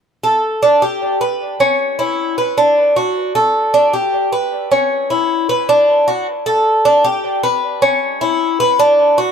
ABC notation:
X:1
M:4/4
L:1/8
Q:1/4=154
K:D
V:1 name="Cuban tres"
z A2 D G2 B2 | C2 E2 B D2 F- | F A2 D G2 B2 | C2 E2 B D2 F |
z A2 D G2 B2 | C2 E2 B D2 F |]